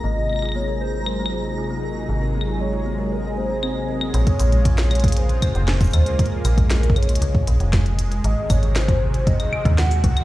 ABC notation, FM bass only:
X:1
M:4/4
L:1/16
Q:1/4=117
K:Bbm
V:1 name="FM bass" clef=bass
A,,,16 | A,,,16 | B,,, z B,,,8 z F,,,3 E,, z | z2 B,,,6 D,,2 B,,, F,,,4- F,,, |
A,,, z A,,,8 z E,,3 C,, z |]